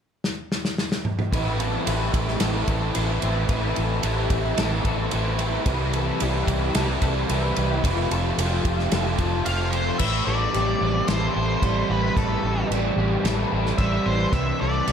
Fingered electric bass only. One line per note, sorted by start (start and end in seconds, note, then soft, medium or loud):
1.32 1.76 A1 medium
1.87 2.09 A1 medium
2.14 2.36 A1 medium
2.41 2.63 A1 medium
2.68 2.90 A1 medium
2.96 3.18 A1 medium
3.23 3.45 A1 medium
3.49 3.71 A1 medium
3.78 3.99 A1 medium
4.04 4.26 A1 medium
4.31 4.53 A1 medium
4.58 4.80 A1 medium
4.85 5.07 A1 medium
5.13 5.57 A1 medium
5.66 6.10 C2 medium
6.22 6.43 C2 medium
6.47 6.69 C2 medium
6.75 6.97 C2 medium
7.02 7.24 C2 medium
7.30 7.51 C2 medium
7.57 7.79 C2 medium
7.84 8.05 F1 medium
8.11 8.33 F1 medium
8.38 8.60 F1 medium
8.65 8.87 F1 medium
8.93 9.14 F1 medium
9.19 9.41 F1 medium
9.47 9.90 F1 medium
10.01 10.19 A1 medium
10.27 10.46 A1 medium
10.55 10.73 A1 medium
10.81 11.00 A1 medium
11.09 11.27 A1 medium
11.36 11.55 A1 medium
11.63 11.82 A1 medium
11.90 12.08 A1 medium
12.17 12.36 A1 medium
12.43 12.62 A1 medium
12.71 12.89 A1 medium
12.96 13.16 A1 medium
13.24 13.43 A1 medium
13.53 13.71 A1 medium
13.79 13.97 A1 medium
14.06 14.25 A1 medium
14.33 14.51 C2 loud
14.62 14.80 C2 medium
14.88 14.92 C2 medium